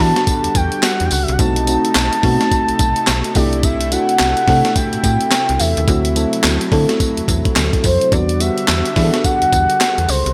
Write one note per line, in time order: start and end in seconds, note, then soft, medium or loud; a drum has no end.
0.00 1.37 D3 medium
0.00 0.14 E3 medium
0.00 1.37 G3 medium
0.00 1.41 G3 medium
0.00 1.41 B3 medium
0.00 1.41 D4 medium
0.00 0.70 F#4 medium
0.00 1.37 F#4 medium
0.00 1.41 A4 medium
0.00 0.58 A5 loud
0.16 snare medium
0.16 closed hi-hat medium
0.27 kick medium
0.27 closed hi-hat medium
0.27 tambourine medium
0.44 0.49 E2 soft
0.44 closed hi-hat medium
0.55 0.70 E2 medium
0.55 0.85 G5 loud
0.55 kick loud
0.55 closed hi-hat medium
0.55 tambourine medium
0.72 closed hi-hat medium
0.83 1.07 F#5 loud
0.83 snare loud
0.83 clap medium
0.83 closed hi-hat medium
0.83 tambourine medium
1.00 1.10 E2 medium
1.00 closed hi-hat medium
1.05 1.13 G5 medium
1.11 1.26 C#2 medium
1.11 1.24 F#5 medium
1.11 open hi-hat medium
1.11 tambourine medium
1.23 1.34 E5 medium
1.28 1.38 C2 loud
1.28 1.39 F#5 medium
1.28 closed hi-hat soft
1.39 1.78 B1 loud
1.39 8.08 C3 medium
1.39 5.84 A3 medium
1.39 1.59 A3 medium
1.39 1.59 C4 medium
1.39 3.33 D#4 medium
1.39 1.59 D#4 medium
1.39 1.59 F#4 medium
1.39 3.37 A5 loud
1.39 kick loud
1.39 closed hi-hat medium
1.39 tambourine medium
1.56 closed hi-hat medium
1.67 2.02 A3 medium
1.67 2.02 C4 medium
1.67 2.03 D#4 medium
1.67 2.03 F#4 medium
1.67 closed hi-hat medium
1.67 tambourine medium
1.85 closed hi-hat soft
1.95 2.10 B1 medium
1.95 snare loud
1.95 clap medium
1.95 closed hi-hat medium
1.95 tambourine loud
2.13 closed hi-hat medium
2.23 2.38 B2 loud
2.23 2.94 A3 medium
2.23 2.94 C4 medium
2.23 2.94 D#4 medium
2.23 2.94 F#4 loud
2.23 kick loud
2.23 open hi-hat medium
2.41 snare medium
2.41 closed hi-hat medium
2.51 kick medium
2.51 closed hi-hat medium
2.51 tambourine medium
2.68 2.73 B1 medium
2.68 closed hi-hat medium
2.79 2.94 B1 medium
2.79 kick loud
2.79 closed hi-hat medium
2.79 tambourine medium
2.96 closed hi-hat medium
3.07 3.23 B1 loud
3.07 snare loud
3.07 clap medium
3.07 closed hi-hat medium
3.07 tambourine loud
3.24 closed hi-hat medium
3.35 3.98 C2 medium
3.35 3.83 A3 medium
3.35 3.83 D4 medium
3.35 5.85 E4 medium
3.35 3.83 E4 medium
3.35 3.84 G4 medium
3.35 3.65 D5 medium
3.35 kick medium
3.35 open hi-hat medium
3.35 tambourine medium
3.53 closed hi-hat soft
3.63 3.93 E5 loud
3.63 kick loud
3.63 closed hi-hat medium
3.63 tambourine medium
3.81 closed hi-hat medium
3.91 4.27 A3 medium
3.91 4.27 D4 medium
3.91 4.27 E4 medium
3.91 4.27 F#4 medium
3.91 4.77 F#5 loud
3.91 closed hi-hat medium
3.91 tambourine medium
4.09 closed hi-hat soft
4.19 4.35 C2 medium
4.19 snare loud
4.19 clap medium
4.19 closed hi-hat medium
4.19 tambourine medium
4.37 closed hi-hat medium
4.48 4.62 C3 loud
4.48 5.18 A3 medium
4.48 5.18 D4 medium
4.48 5.18 E4 medium
4.48 5.19 A4 medium
4.48 kick loud
4.48 snare medium
4.48 open hi-hat medium
4.65 snare medium
4.65 closed hi-hat medium
4.76 5.61 G5 loud
4.76 kick medium
4.76 closed hi-hat medium
4.76 tambourine medium
4.93 4.98 A2 soft
4.93 closed hi-hat medium
5.04 5.18 A2 medium
5.04 kick loud
5.04 closed hi-hat medium
5.04 tambourine medium
5.21 closed hi-hat medium
5.31 snare loud
5.31 clap medium
5.31 closed hi-hat medium
5.31 tambourine loud
5.49 5.58 C2 medium
5.49 closed hi-hat medium
5.59 5.75 E2 medium
5.59 6.44 E5 medium
5.59 open hi-hat medium
5.59 tambourine medium
5.77 5.86 D#2 medium
5.77 closed hi-hat medium
5.88 6.26 D2 loud
5.88 8.10 F#3 medium
5.88 6.07 A3 medium
5.88 6.07 C4 medium
5.88 8.10 E4 medium
5.88 6.08 E4 medium
5.88 6.08 F#4 medium
5.88 kick loud
5.88 closed hi-hat medium
5.88 tambourine medium
6.05 closed hi-hat medium
6.16 6.51 A3 medium
6.16 6.51 C4 medium
6.16 6.51 E4 medium
6.16 6.51 A4 medium
6.16 closed hi-hat medium
6.16 tambourine medium
6.33 closed hi-hat medium
6.44 6.59 D2 loud
6.44 snare loud
6.44 clap medium
6.44 closed hi-hat medium
6.44 tambourine loud
6.61 closed hi-hat medium
6.72 6.87 D3 loud
6.72 7.42 A3 loud
6.72 7.42 C4 medium
6.72 7.43 E4 medium
6.72 7.43 A4 loud
6.72 kick medium
6.72 open hi-hat medium
6.89 snare medium
6.89 closed hi-hat medium
7.00 kick medium
7.00 closed hi-hat medium
7.00 tambourine medium
7.17 7.22 E2 soft
7.17 closed hi-hat medium
7.28 7.43 E2 loud
7.28 kick loud
7.28 closed hi-hat medium
7.28 tambourine medium
7.45 kick loud
7.45 closed hi-hat medium
7.56 7.71 D2 loud
7.56 snare loud
7.56 clap medium
7.56 closed hi-hat medium
7.56 tambourine loud
7.73 kick loud
7.73 closed hi-hat medium
7.84 7.99 F2 medium
7.84 8.14 C5 medium
7.84 kick medium
7.84 open hi-hat medium
7.84 tambourine medium
8.01 closed hi-hat medium
8.12 8.51 E2 loud
8.12 10.33 D3 medium
8.12 10.33 G3 medium
8.12 8.32 G3 medium
8.12 8.32 B3 medium
8.12 8.32 D4 medium
8.12 10.33 F#4 medium
8.12 8.32 F#4 medium
8.12 8.42 D5 loud
8.12 kick loud
8.12 closed hi-hat medium
8.12 tambourine medium
8.29 closed hi-hat medium
8.40 8.75 G3 medium
8.40 8.75 B3 medium
8.40 8.76 D4 medium
8.40 8.76 F#4 medium
8.40 9.26 E5 loud
8.40 closed hi-hat medium
8.40 tambourine medium
8.58 closed hi-hat soft
8.68 8.83 E2 loud
8.68 snare loud
8.68 clap medium
8.68 closed hi-hat medium
8.68 tambourine loud
8.85 closed hi-hat medium
8.96 9.11 E3 medium
8.96 9.67 G3 medium
8.96 9.67 B3 medium
8.96 9.67 D4 medium
8.96 9.05 G#4 medium
8.96 kick medium
8.96 snare medium
8.96 open hi-hat medium
9.04 9.71 A4 medium
9.14 snare medium
9.14 closed hi-hat medium
9.24 10.11 F#5 loud
9.24 kick medium
9.24 closed hi-hat medium
9.24 tambourine medium
9.42 9.46 E2 soft
9.42 closed hi-hat soft
9.53 9.67 E2 medium
9.53 kick medium
9.53 closed hi-hat medium
9.53 tambourine medium
9.70 closed hi-hat medium
9.81 snare loud
9.81 clap medium
9.81 closed hi-hat medium
9.81 tambourine loud
9.98 10.07 E2 medium
9.98 closed hi-hat medium
10.08 10.23 C#2 medium
10.08 10.33 C5 loud
10.08 open hi-hat medium
10.08 tambourine medium
10.26 10.33 C2 medium
10.26 closed hi-hat medium